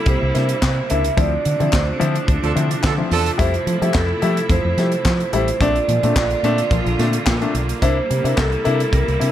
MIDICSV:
0, 0, Header, 1, 7, 480
1, 0, Start_track
1, 0, Key_signature, -1, "major"
1, 0, Tempo, 553506
1, 1017, Time_signature, 4, 2, 24, 8
1, 8080, End_track
2, 0, Start_track
2, 0, Title_t, "Vibraphone"
2, 0, Program_c, 0, 11
2, 75, Note_on_c, 0, 72, 99
2, 782, Note_on_c, 0, 76, 100
2, 807, Note_off_c, 0, 72, 0
2, 1003, Note_off_c, 0, 76, 0
2, 1033, Note_on_c, 0, 74, 109
2, 1444, Note_off_c, 0, 74, 0
2, 1455, Note_on_c, 0, 74, 60
2, 1504, Note_off_c, 0, 74, 0
2, 1504, Note_on_c, 0, 72, 80
2, 1947, Note_off_c, 0, 72, 0
2, 2950, Note_on_c, 0, 72, 94
2, 3391, Note_off_c, 0, 72, 0
2, 3426, Note_on_c, 0, 69, 85
2, 3908, Note_on_c, 0, 72, 108
2, 3917, Note_off_c, 0, 69, 0
2, 4589, Note_off_c, 0, 72, 0
2, 4641, Note_on_c, 0, 72, 101
2, 4873, Note_on_c, 0, 74, 118
2, 4877, Note_off_c, 0, 72, 0
2, 5339, Note_off_c, 0, 74, 0
2, 5349, Note_on_c, 0, 74, 100
2, 5791, Note_off_c, 0, 74, 0
2, 6781, Note_on_c, 0, 72, 124
2, 7210, Note_on_c, 0, 70, 77
2, 7217, Note_off_c, 0, 72, 0
2, 7263, Note_off_c, 0, 70, 0
2, 7266, Note_on_c, 0, 69, 102
2, 7748, Note_on_c, 0, 70, 104
2, 7757, Note_off_c, 0, 69, 0
2, 8080, Note_off_c, 0, 70, 0
2, 8080, End_track
3, 0, Start_track
3, 0, Title_t, "Horn section"
3, 0, Program_c, 1, 61
3, 2110, Note_on_c, 1, 53, 89
3, 2110, Note_on_c, 1, 62, 88
3, 2110, Note_on_c, 1, 69, 90
3, 2180, Note_off_c, 1, 53, 0
3, 2180, Note_off_c, 1, 62, 0
3, 2180, Note_off_c, 1, 69, 0
3, 2461, Note_on_c, 1, 53, 84
3, 2461, Note_on_c, 1, 62, 87
3, 2462, Note_on_c, 1, 69, 97
3, 2541, Note_off_c, 1, 53, 0
3, 2541, Note_off_c, 1, 62, 0
3, 2542, Note_off_c, 1, 69, 0
3, 2707, Note_on_c, 1, 69, 112
3, 2709, Note_on_c, 1, 62, 90
3, 2710, Note_on_c, 1, 53, 105
3, 2857, Note_off_c, 1, 69, 0
3, 2858, Note_off_c, 1, 62, 0
3, 2859, Note_off_c, 1, 53, 0
3, 8080, End_track
4, 0, Start_track
4, 0, Title_t, "Grand piano"
4, 0, Program_c, 2, 0
4, 60, Note_on_c, 2, 48, 66
4, 64, Note_on_c, 2, 55, 66
4, 178, Note_off_c, 2, 48, 0
4, 179, Note_off_c, 2, 55, 0
4, 297, Note_on_c, 2, 58, 72
4, 298, Note_on_c, 2, 62, 66
4, 300, Note_on_c, 2, 64, 85
4, 411, Note_off_c, 2, 62, 0
4, 413, Note_off_c, 2, 64, 0
4, 416, Note_off_c, 2, 58, 0
4, 424, Note_on_c, 2, 62, 28
4, 426, Note_on_c, 2, 64, 28
4, 469, Note_off_c, 2, 62, 0
4, 470, Note_off_c, 2, 64, 0
4, 782, Note_on_c, 2, 58, 91
4, 783, Note_on_c, 2, 62, 80
4, 789, Note_on_c, 2, 64, 94
4, 898, Note_off_c, 2, 58, 0
4, 899, Note_off_c, 2, 62, 0
4, 902, Note_off_c, 2, 64, 0
4, 1014, Note_on_c, 2, 53, 90
4, 1017, Note_on_c, 2, 60, 80
4, 1021, Note_on_c, 2, 64, 91
4, 1135, Note_off_c, 2, 53, 0
4, 1136, Note_off_c, 2, 60, 0
4, 1138, Note_off_c, 2, 64, 0
4, 1262, Note_on_c, 2, 50, 66
4, 1378, Note_off_c, 2, 50, 0
4, 1387, Note_on_c, 2, 53, 80
4, 1387, Note_on_c, 2, 60, 75
4, 1395, Note_on_c, 2, 64, 79
4, 1491, Note_off_c, 2, 53, 0
4, 1491, Note_off_c, 2, 60, 0
4, 1495, Note_off_c, 2, 64, 0
4, 1731, Note_on_c, 2, 53, 102
4, 1733, Note_on_c, 2, 60, 92
4, 1734, Note_on_c, 2, 64, 101
4, 1853, Note_off_c, 2, 53, 0
4, 1854, Note_off_c, 2, 60, 0
4, 1855, Note_off_c, 2, 64, 0
4, 1973, Note_on_c, 2, 50, 62
4, 2094, Note_off_c, 2, 50, 0
4, 2214, Note_on_c, 2, 53, 69
4, 2218, Note_on_c, 2, 60, 71
4, 2219, Note_on_c, 2, 64, 79
4, 2334, Note_off_c, 2, 60, 0
4, 2334, Note_off_c, 2, 64, 0
4, 2335, Note_off_c, 2, 53, 0
4, 2347, Note_on_c, 2, 60, 25
4, 2347, Note_on_c, 2, 64, 27
4, 2391, Note_off_c, 2, 60, 0
4, 2391, Note_off_c, 2, 64, 0
4, 2460, Note_on_c, 2, 50, 56
4, 2577, Note_off_c, 2, 50, 0
4, 2583, Note_on_c, 2, 53, 79
4, 2585, Note_on_c, 2, 60, 70
4, 2586, Note_on_c, 2, 64, 82
4, 2687, Note_off_c, 2, 64, 0
4, 2689, Note_off_c, 2, 53, 0
4, 2689, Note_off_c, 2, 60, 0
4, 2700, Note_on_c, 2, 64, 25
4, 2702, Note_on_c, 2, 60, 23
4, 2749, Note_off_c, 2, 64, 0
4, 2751, Note_off_c, 2, 60, 0
4, 2929, Note_on_c, 2, 55, 94
4, 2935, Note_on_c, 2, 57, 82
4, 2936, Note_on_c, 2, 64, 105
4, 3052, Note_off_c, 2, 55, 0
4, 3055, Note_off_c, 2, 57, 0
4, 3056, Note_off_c, 2, 64, 0
4, 3184, Note_on_c, 2, 53, 60
4, 3300, Note_off_c, 2, 53, 0
4, 3310, Note_on_c, 2, 55, 83
4, 3310, Note_on_c, 2, 57, 71
4, 3313, Note_on_c, 2, 64, 92
4, 3413, Note_off_c, 2, 55, 0
4, 3413, Note_off_c, 2, 57, 0
4, 3415, Note_off_c, 2, 64, 0
4, 3659, Note_on_c, 2, 55, 93
4, 3665, Note_on_c, 2, 64, 107
4, 3666, Note_on_c, 2, 57, 90
4, 3778, Note_off_c, 2, 55, 0
4, 3781, Note_off_c, 2, 57, 0
4, 3781, Note_off_c, 2, 64, 0
4, 3912, Note_on_c, 2, 53, 67
4, 4024, Note_off_c, 2, 53, 0
4, 4150, Note_on_c, 2, 55, 77
4, 4154, Note_on_c, 2, 57, 66
4, 4155, Note_on_c, 2, 64, 76
4, 4263, Note_off_c, 2, 55, 0
4, 4263, Note_off_c, 2, 64, 0
4, 4265, Note_off_c, 2, 57, 0
4, 4276, Note_on_c, 2, 64, 26
4, 4278, Note_on_c, 2, 57, 26
4, 4316, Note_off_c, 2, 64, 0
4, 4317, Note_off_c, 2, 57, 0
4, 4623, Note_on_c, 2, 55, 99
4, 4627, Note_on_c, 2, 64, 104
4, 4629, Note_on_c, 2, 57, 78
4, 4740, Note_off_c, 2, 55, 0
4, 4742, Note_off_c, 2, 64, 0
4, 4743, Note_off_c, 2, 57, 0
4, 4861, Note_on_c, 2, 57, 95
4, 4866, Note_on_c, 2, 60, 82
4, 4869, Note_on_c, 2, 62, 106
4, 4979, Note_off_c, 2, 57, 0
4, 4982, Note_off_c, 2, 60, 0
4, 4983, Note_off_c, 2, 62, 0
4, 5109, Note_on_c, 2, 46, 70
4, 5112, Note_on_c, 2, 53, 61
4, 5223, Note_off_c, 2, 46, 0
4, 5225, Note_off_c, 2, 53, 0
4, 5229, Note_on_c, 2, 57, 81
4, 5237, Note_on_c, 2, 60, 78
4, 5237, Note_on_c, 2, 62, 88
4, 5333, Note_off_c, 2, 57, 0
4, 5337, Note_off_c, 2, 60, 0
4, 5337, Note_off_c, 2, 62, 0
4, 5587, Note_on_c, 2, 57, 104
4, 5588, Note_on_c, 2, 60, 91
4, 5592, Note_on_c, 2, 62, 106
4, 5702, Note_off_c, 2, 57, 0
4, 5703, Note_off_c, 2, 60, 0
4, 5705, Note_off_c, 2, 62, 0
4, 5825, Note_on_c, 2, 53, 68
4, 5827, Note_on_c, 2, 46, 66
4, 5942, Note_off_c, 2, 46, 0
4, 5942, Note_off_c, 2, 53, 0
4, 6067, Note_on_c, 2, 57, 82
4, 6068, Note_on_c, 2, 60, 65
4, 6072, Note_on_c, 2, 62, 90
4, 6180, Note_off_c, 2, 62, 0
4, 6182, Note_off_c, 2, 57, 0
4, 6183, Note_off_c, 2, 60, 0
4, 6193, Note_on_c, 2, 62, 27
4, 6196, Note_on_c, 2, 60, 25
4, 6235, Note_off_c, 2, 62, 0
4, 6237, Note_off_c, 2, 60, 0
4, 6301, Note_on_c, 2, 53, 58
4, 6305, Note_on_c, 2, 46, 59
4, 6420, Note_off_c, 2, 53, 0
4, 6421, Note_off_c, 2, 46, 0
4, 6431, Note_on_c, 2, 60, 69
4, 6435, Note_on_c, 2, 57, 90
4, 6436, Note_on_c, 2, 62, 92
4, 6531, Note_off_c, 2, 62, 0
4, 6535, Note_off_c, 2, 60, 0
4, 6536, Note_off_c, 2, 57, 0
4, 6544, Note_on_c, 2, 62, 28
4, 6548, Note_on_c, 2, 60, 24
4, 6593, Note_off_c, 2, 62, 0
4, 6595, Note_off_c, 2, 60, 0
4, 6782, Note_on_c, 2, 58, 89
4, 6785, Note_on_c, 2, 62, 96
4, 6786, Note_on_c, 2, 64, 107
4, 6900, Note_off_c, 2, 58, 0
4, 6902, Note_off_c, 2, 62, 0
4, 6902, Note_off_c, 2, 64, 0
4, 7025, Note_on_c, 2, 48, 70
4, 7026, Note_on_c, 2, 55, 65
4, 7141, Note_off_c, 2, 48, 0
4, 7142, Note_off_c, 2, 55, 0
4, 7147, Note_on_c, 2, 58, 83
4, 7151, Note_on_c, 2, 64, 85
4, 7152, Note_on_c, 2, 62, 75
4, 7253, Note_off_c, 2, 58, 0
4, 7255, Note_off_c, 2, 62, 0
4, 7255, Note_off_c, 2, 64, 0
4, 7497, Note_on_c, 2, 58, 98
4, 7503, Note_on_c, 2, 62, 85
4, 7503, Note_on_c, 2, 64, 110
4, 7618, Note_off_c, 2, 58, 0
4, 7621, Note_off_c, 2, 62, 0
4, 7621, Note_off_c, 2, 64, 0
4, 7740, Note_on_c, 2, 48, 61
4, 7742, Note_on_c, 2, 55, 63
4, 7859, Note_off_c, 2, 48, 0
4, 7860, Note_off_c, 2, 55, 0
4, 7971, Note_on_c, 2, 58, 64
4, 7977, Note_on_c, 2, 62, 69
4, 7978, Note_on_c, 2, 64, 90
4, 8080, Note_off_c, 2, 58, 0
4, 8080, Note_off_c, 2, 62, 0
4, 8080, Note_off_c, 2, 64, 0
4, 8080, End_track
5, 0, Start_track
5, 0, Title_t, "String section"
5, 0, Program_c, 3, 48
5, 0, Note_on_c, 3, 48, 82
5, 0, Note_on_c, 3, 55, 79
5, 0, Note_on_c, 3, 58, 82
5, 0, Note_on_c, 3, 64, 96
5, 983, Note_off_c, 3, 58, 0
5, 1003, Note_off_c, 3, 64, 0
5, 1004, Note_off_c, 3, 55, 0
5, 1012, Note_on_c, 3, 57, 74
5, 1015, Note_on_c, 3, 53, 84
5, 1015, Note_on_c, 3, 62, 91
5, 2918, Note_off_c, 3, 62, 0
5, 2946, Note_on_c, 3, 64, 89
5, 4823, Note_off_c, 3, 53, 0
5, 4831, Note_off_c, 3, 48, 0
5, 4844, Note_off_c, 3, 64, 0
5, 4851, Note_on_c, 3, 65, 97
5, 4858, Note_on_c, 3, 58, 77
5, 4859, Note_on_c, 3, 50, 80
5, 6743, Note_off_c, 3, 57, 0
5, 6757, Note_off_c, 3, 65, 0
5, 6761, Note_off_c, 3, 50, 0
5, 6786, Note_on_c, 3, 48, 86
5, 6790, Note_on_c, 3, 64, 87
5, 6792, Note_on_c, 3, 55, 83
5, 8080, Note_off_c, 3, 48, 0
5, 8080, Note_off_c, 3, 55, 0
5, 8080, Note_off_c, 3, 58, 0
5, 8080, Note_off_c, 3, 64, 0
5, 8080, End_track
6, 0, Start_track
6, 0, Title_t, "Fingered electric bass"
6, 0, Program_c, 4, 33
6, 55, Note_on_c, 4, 36, 109
6, 137, Note_off_c, 4, 36, 0
6, 195, Note_on_c, 4, 36, 100
6, 264, Note_off_c, 4, 36, 0
6, 308, Note_on_c, 4, 48, 104
6, 457, Note_off_c, 4, 48, 0
6, 543, Note_on_c, 4, 48, 96
6, 694, Note_off_c, 4, 48, 0
6, 791, Note_on_c, 4, 37, 94
6, 939, Note_off_c, 4, 37, 0
6, 1021, Note_on_c, 4, 38, 116
6, 1173, Note_off_c, 4, 38, 0
6, 1264, Note_on_c, 4, 50, 101
6, 1343, Note_off_c, 4, 50, 0
6, 1391, Note_on_c, 4, 50, 97
6, 1460, Note_off_c, 4, 50, 0
6, 1502, Note_on_c, 4, 38, 97
6, 1653, Note_off_c, 4, 38, 0
6, 1740, Note_on_c, 4, 50, 91
6, 1892, Note_off_c, 4, 50, 0
6, 1980, Note_on_c, 4, 38, 96
6, 2060, Note_off_c, 4, 38, 0
6, 2111, Note_on_c, 4, 38, 88
6, 2181, Note_off_c, 4, 38, 0
6, 2222, Note_on_c, 4, 50, 98
6, 2373, Note_off_c, 4, 50, 0
6, 2462, Note_on_c, 4, 50, 101
6, 2613, Note_off_c, 4, 50, 0
6, 2700, Note_on_c, 4, 40, 99
6, 2852, Note_off_c, 4, 40, 0
6, 2942, Note_on_c, 4, 41, 104
6, 3093, Note_off_c, 4, 41, 0
6, 3179, Note_on_c, 4, 53, 91
6, 3260, Note_off_c, 4, 53, 0
6, 3310, Note_on_c, 4, 53, 101
6, 3380, Note_off_c, 4, 53, 0
6, 3423, Note_on_c, 4, 41, 93
6, 3574, Note_off_c, 4, 41, 0
6, 3663, Note_on_c, 4, 53, 89
6, 3814, Note_off_c, 4, 53, 0
6, 3899, Note_on_c, 4, 41, 109
6, 3980, Note_off_c, 4, 41, 0
6, 4030, Note_on_c, 4, 41, 102
6, 4100, Note_off_c, 4, 41, 0
6, 4139, Note_on_c, 4, 53, 111
6, 4292, Note_off_c, 4, 53, 0
6, 4381, Note_on_c, 4, 53, 102
6, 4533, Note_off_c, 4, 53, 0
6, 4621, Note_on_c, 4, 33, 94
6, 4773, Note_off_c, 4, 33, 0
6, 4863, Note_on_c, 4, 34, 116
6, 5015, Note_off_c, 4, 34, 0
6, 5100, Note_on_c, 4, 46, 90
6, 5181, Note_off_c, 4, 46, 0
6, 5232, Note_on_c, 4, 46, 96
6, 5302, Note_off_c, 4, 46, 0
6, 5342, Note_on_c, 4, 34, 112
6, 5494, Note_off_c, 4, 34, 0
6, 5577, Note_on_c, 4, 46, 94
6, 5731, Note_off_c, 4, 46, 0
6, 5819, Note_on_c, 4, 34, 90
6, 5901, Note_off_c, 4, 34, 0
6, 5949, Note_on_c, 4, 34, 103
6, 6020, Note_off_c, 4, 34, 0
6, 6060, Note_on_c, 4, 46, 106
6, 6213, Note_off_c, 4, 46, 0
6, 6306, Note_on_c, 4, 46, 104
6, 6457, Note_off_c, 4, 46, 0
6, 6542, Note_on_c, 4, 35, 82
6, 6694, Note_off_c, 4, 35, 0
6, 6784, Note_on_c, 4, 36, 120
6, 6936, Note_off_c, 4, 36, 0
6, 7030, Note_on_c, 4, 48, 99
6, 7108, Note_off_c, 4, 48, 0
6, 7149, Note_on_c, 4, 48, 97
6, 7221, Note_off_c, 4, 48, 0
6, 7267, Note_on_c, 4, 36, 97
6, 7417, Note_off_c, 4, 36, 0
6, 7513, Note_on_c, 4, 48, 109
6, 7662, Note_off_c, 4, 48, 0
6, 7743, Note_on_c, 4, 36, 114
6, 7823, Note_off_c, 4, 36, 0
6, 7875, Note_on_c, 4, 36, 96
6, 7944, Note_off_c, 4, 36, 0
6, 7991, Note_on_c, 4, 48, 114
6, 8080, Note_off_c, 4, 48, 0
6, 8080, End_track
7, 0, Start_track
7, 0, Title_t, "Drums"
7, 50, Note_on_c, 9, 42, 75
7, 55, Note_on_c, 9, 36, 122
7, 137, Note_off_c, 9, 42, 0
7, 142, Note_off_c, 9, 36, 0
7, 303, Note_on_c, 9, 42, 70
7, 306, Note_on_c, 9, 38, 39
7, 390, Note_off_c, 9, 42, 0
7, 392, Note_off_c, 9, 38, 0
7, 423, Note_on_c, 9, 42, 53
7, 510, Note_off_c, 9, 42, 0
7, 539, Note_on_c, 9, 36, 95
7, 539, Note_on_c, 9, 38, 99
7, 543, Note_on_c, 9, 39, 90
7, 625, Note_off_c, 9, 38, 0
7, 626, Note_off_c, 9, 36, 0
7, 629, Note_off_c, 9, 39, 0
7, 779, Note_on_c, 9, 42, 68
7, 866, Note_off_c, 9, 42, 0
7, 906, Note_on_c, 9, 42, 60
7, 993, Note_off_c, 9, 42, 0
7, 1019, Note_on_c, 9, 36, 122
7, 1021, Note_on_c, 9, 42, 81
7, 1106, Note_off_c, 9, 36, 0
7, 1107, Note_off_c, 9, 42, 0
7, 1261, Note_on_c, 9, 42, 66
7, 1347, Note_off_c, 9, 42, 0
7, 1390, Note_on_c, 9, 42, 44
7, 1477, Note_off_c, 9, 42, 0
7, 1497, Note_on_c, 9, 39, 94
7, 1501, Note_on_c, 9, 36, 127
7, 1502, Note_on_c, 9, 38, 127
7, 1583, Note_off_c, 9, 39, 0
7, 1587, Note_off_c, 9, 36, 0
7, 1589, Note_off_c, 9, 38, 0
7, 1743, Note_on_c, 9, 42, 69
7, 1830, Note_off_c, 9, 42, 0
7, 1869, Note_on_c, 9, 42, 55
7, 1956, Note_off_c, 9, 42, 0
7, 1978, Note_on_c, 9, 36, 116
7, 1982, Note_on_c, 9, 42, 77
7, 2065, Note_off_c, 9, 36, 0
7, 2069, Note_off_c, 9, 42, 0
7, 2113, Note_on_c, 9, 42, 35
7, 2199, Note_off_c, 9, 42, 0
7, 2226, Note_on_c, 9, 42, 81
7, 2312, Note_off_c, 9, 42, 0
7, 2349, Note_on_c, 9, 42, 52
7, 2436, Note_off_c, 9, 42, 0
7, 2456, Note_on_c, 9, 39, 86
7, 2461, Note_on_c, 9, 36, 107
7, 2464, Note_on_c, 9, 38, 107
7, 2543, Note_off_c, 9, 39, 0
7, 2547, Note_off_c, 9, 36, 0
7, 2551, Note_off_c, 9, 38, 0
7, 2701, Note_on_c, 9, 46, 72
7, 2788, Note_off_c, 9, 46, 0
7, 2828, Note_on_c, 9, 42, 50
7, 2915, Note_off_c, 9, 42, 0
7, 2940, Note_on_c, 9, 36, 117
7, 2941, Note_on_c, 9, 42, 89
7, 3027, Note_off_c, 9, 36, 0
7, 3028, Note_off_c, 9, 42, 0
7, 3069, Note_on_c, 9, 42, 41
7, 3155, Note_off_c, 9, 42, 0
7, 3185, Note_on_c, 9, 42, 69
7, 3271, Note_off_c, 9, 42, 0
7, 3315, Note_on_c, 9, 42, 47
7, 3402, Note_off_c, 9, 42, 0
7, 3415, Note_on_c, 9, 39, 94
7, 3421, Note_on_c, 9, 38, 125
7, 3422, Note_on_c, 9, 36, 121
7, 3501, Note_off_c, 9, 39, 0
7, 3508, Note_off_c, 9, 38, 0
7, 3509, Note_off_c, 9, 36, 0
7, 3660, Note_on_c, 9, 42, 59
7, 3747, Note_off_c, 9, 42, 0
7, 3791, Note_on_c, 9, 42, 54
7, 3878, Note_off_c, 9, 42, 0
7, 3898, Note_on_c, 9, 36, 113
7, 3898, Note_on_c, 9, 42, 85
7, 3984, Note_off_c, 9, 42, 0
7, 3985, Note_off_c, 9, 36, 0
7, 4143, Note_on_c, 9, 42, 73
7, 4146, Note_on_c, 9, 38, 42
7, 4230, Note_off_c, 9, 42, 0
7, 4233, Note_off_c, 9, 38, 0
7, 4264, Note_on_c, 9, 42, 49
7, 4351, Note_off_c, 9, 42, 0
7, 4380, Note_on_c, 9, 36, 102
7, 4382, Note_on_c, 9, 39, 83
7, 4383, Note_on_c, 9, 38, 93
7, 4467, Note_off_c, 9, 36, 0
7, 4469, Note_off_c, 9, 38, 0
7, 4469, Note_off_c, 9, 39, 0
7, 4512, Note_on_c, 9, 42, 37
7, 4599, Note_off_c, 9, 42, 0
7, 4622, Note_on_c, 9, 42, 69
7, 4709, Note_off_c, 9, 42, 0
7, 4752, Note_on_c, 9, 42, 57
7, 4838, Note_off_c, 9, 42, 0
7, 4861, Note_on_c, 9, 36, 116
7, 4863, Note_on_c, 9, 42, 81
7, 4948, Note_off_c, 9, 36, 0
7, 4950, Note_off_c, 9, 42, 0
7, 4992, Note_on_c, 9, 42, 37
7, 5078, Note_off_c, 9, 42, 0
7, 5105, Note_on_c, 9, 42, 72
7, 5192, Note_off_c, 9, 42, 0
7, 5233, Note_on_c, 9, 42, 52
7, 5319, Note_off_c, 9, 42, 0
7, 5342, Note_on_c, 9, 36, 127
7, 5343, Note_on_c, 9, 38, 121
7, 5346, Note_on_c, 9, 39, 106
7, 5429, Note_off_c, 9, 36, 0
7, 5429, Note_off_c, 9, 38, 0
7, 5432, Note_off_c, 9, 39, 0
7, 5468, Note_on_c, 9, 42, 38
7, 5554, Note_off_c, 9, 42, 0
7, 5584, Note_on_c, 9, 42, 70
7, 5671, Note_off_c, 9, 42, 0
7, 5708, Note_on_c, 9, 42, 49
7, 5794, Note_off_c, 9, 42, 0
7, 5818, Note_on_c, 9, 36, 127
7, 5820, Note_on_c, 9, 42, 78
7, 5905, Note_off_c, 9, 36, 0
7, 5907, Note_off_c, 9, 42, 0
7, 5953, Note_on_c, 9, 42, 36
7, 6040, Note_off_c, 9, 42, 0
7, 6066, Note_on_c, 9, 42, 78
7, 6068, Note_on_c, 9, 38, 41
7, 6152, Note_off_c, 9, 42, 0
7, 6155, Note_off_c, 9, 38, 0
7, 6183, Note_on_c, 9, 42, 55
7, 6270, Note_off_c, 9, 42, 0
7, 6299, Note_on_c, 9, 39, 102
7, 6301, Note_on_c, 9, 36, 102
7, 6302, Note_on_c, 9, 38, 105
7, 6385, Note_off_c, 9, 39, 0
7, 6388, Note_off_c, 9, 36, 0
7, 6389, Note_off_c, 9, 38, 0
7, 6431, Note_on_c, 9, 42, 33
7, 6518, Note_off_c, 9, 42, 0
7, 6546, Note_on_c, 9, 42, 68
7, 6633, Note_off_c, 9, 42, 0
7, 6670, Note_on_c, 9, 42, 53
7, 6757, Note_off_c, 9, 42, 0
7, 6783, Note_on_c, 9, 36, 104
7, 6783, Note_on_c, 9, 42, 94
7, 6870, Note_off_c, 9, 36, 0
7, 6870, Note_off_c, 9, 42, 0
7, 7030, Note_on_c, 9, 42, 66
7, 7117, Note_off_c, 9, 42, 0
7, 7157, Note_on_c, 9, 42, 48
7, 7244, Note_off_c, 9, 42, 0
7, 7263, Note_on_c, 9, 38, 123
7, 7264, Note_on_c, 9, 36, 127
7, 7264, Note_on_c, 9, 39, 95
7, 7350, Note_off_c, 9, 38, 0
7, 7351, Note_off_c, 9, 36, 0
7, 7351, Note_off_c, 9, 39, 0
7, 7390, Note_on_c, 9, 42, 35
7, 7477, Note_off_c, 9, 42, 0
7, 7503, Note_on_c, 9, 42, 60
7, 7590, Note_off_c, 9, 42, 0
7, 7634, Note_on_c, 9, 42, 52
7, 7721, Note_off_c, 9, 42, 0
7, 7742, Note_on_c, 9, 36, 113
7, 7746, Note_on_c, 9, 42, 76
7, 7828, Note_off_c, 9, 36, 0
7, 7833, Note_off_c, 9, 42, 0
7, 7877, Note_on_c, 9, 42, 39
7, 7963, Note_off_c, 9, 42, 0
7, 7990, Note_on_c, 9, 42, 79
7, 8077, Note_off_c, 9, 42, 0
7, 8080, End_track
0, 0, End_of_file